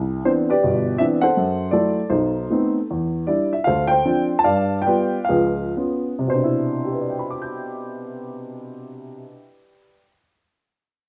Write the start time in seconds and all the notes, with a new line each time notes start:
Already playing: C2
0.25 E3 B3 C4 D4 C5
0.50 G4 B4 D5
0.63 G1 B2
0.98 E3 B3 C4 D4 E5
1.21 A4 C5 F#5
1.37 F#2
1.71 F#3 A3 E4 A4 D5
2.10 B1 D#4 A4 C5
2.50 A3 B3 C4 D#4
2.91 E2
3.27 G3 D4 E4 D5
3.53 E5
3.64 D2 A4 C5 F5
3.88 C5 G5
4.05 F3 C4 D4
4.39 A5
4.44 G2 D5 F5
4.82 G5
4.86 G3 B3 F4 B4 D5
5.25 F5
5.29 C#2 F3 G#4 B4
5.77 B3 C#4 F4
6.19 C3
6.27 B2 C5
6.35 D4
6.44 E4
6.85 G4
6.93 B4
7.01 D5
7.10 G5
7.19 B5
7.30 D6
7.42 G6